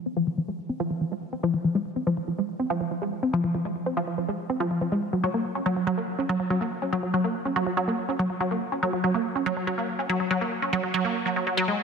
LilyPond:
\new Staff \with { instrumentName = "Synth arpeggio sound" } { \clef bass \time 4/4 \key ges \lydian \tempo 4 = 142 c'16 f16 f16 f16 aes16 r16 c'16 f16 f16 f16 aes16 r16 c'16 f16 f16 f16 | aes16 r16 c'16 f16 f16 f16 aes16 r16 c'16 f16 f16 f16 aes16 r16 c'16 f16 | f16 f16 aes16 r16 c'16 f16 f16 f16 aes16 r16 c'16 f16 f16 f16 aes16 r16 | ges16 ges16 bes16 r16 des'16 ges16 ges16 ges16 bes16 r16 des'16 ges16 ges16 ges16 bes16 r16 |
des'16 ges16 ges16 ges16 bes16 r16 des'16 ges16 ges16 ges16 bes16 r16 des'16 ges16 ges16 ges16 | bes16 r16 des'16 ges16 ges16 ges16 bes16 r16 des'16 ges16 ges16 ges16 bes16 r16 des'16 ges16 | ges16 ges16 bes16 r16 des'16 ges16 ges16 ges16 bes16 r16 ges16 ges16 ges16 ges16 aes16 r16 | }